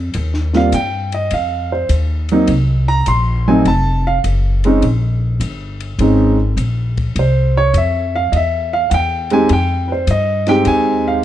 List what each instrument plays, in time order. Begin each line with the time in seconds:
Already playing: upright bass F2
0.14 upright bass D#2, ride
0.34 snare
0.53 grand piano G3 A#3 C4 F4 F5, snare
0.72 upright bass G2, grand piano G5, hi-hat pedal, ride
1.12 grand piano D#5, ride
1.31 upright bass F2, grand piano F5, ride
1.72 grand piano C5
1.89 upright bass D#2, hi-hat pedal, ride
2.29 grand piano F#3 A#3, ride
2.33 grand piano C4 D#4
2.47 upright bass C2, ride
2.88 grand piano A#5
3.06 upright bass A#1, grand piano C6, hi-hat pedal, ride
3.48 grand piano F#3 A3 C4 D#4 G#5
3.65 upright bass F1, grand piano A5, ride
4.07 grand piano F5
4.24 upright bass F#1, hi-hat pedal, ride
4.64 grand piano G#3 C4 C#4 D#4, ride
4.82 upright bass A#1, ride
5.40 upright bass G1, hi-hat pedal, ride
5.80 ride
5.98 upright bass G#1, grand piano G#3 C4 C#4 D#4, ride
6.57 upright bass A#1, hi-hat pedal, ride
6.98 kick, ride
7.16 upright bass C2, grand piano C5, ride
7.57 grand piano C#5
7.74 upright bass F2, grand piano E5, hi-hat pedal, ride
8.15 grand piano F5
8.32 upright bass E2, grand piano D#5, ride
8.36 grand piano E5
8.73 grand piano F5
8.90 upright bass E2, grand piano F#5, hi-hat pedal, ride
8.94 grand piano G5
9.30 grand piano G#3 C4 D#4 G4 G#5, ride
9.49 upright bass F2, grand piano G5, ride
9.88 grand piano B4
9.92 grand piano C5
10.07 upright bass G2, grand piano D#5, hi-hat pedal, ride
10.47 grand piano G#3 C4 D#4 G4 G5, snare, ride
10.65 upright bass D#2, grand piano G#5, ride
11.08 grand piano F5